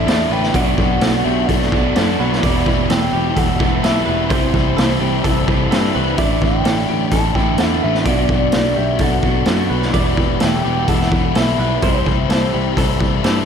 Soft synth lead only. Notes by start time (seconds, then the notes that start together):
Already playing: E5
0.32 G5
0.54 F#5
1.25 E5
1.47 D5
2.90 G5
3.38 F#5
3.84 E5
4.31 C5
6.17 E5
6.43 G5
7.12 A5
7.35 G5
7.60 F#5
7.83 E5
8.08 D5
8.77 E5
9.01 F#5
10.42 G5
10.88 F#5
11.37 E5
11.85 C5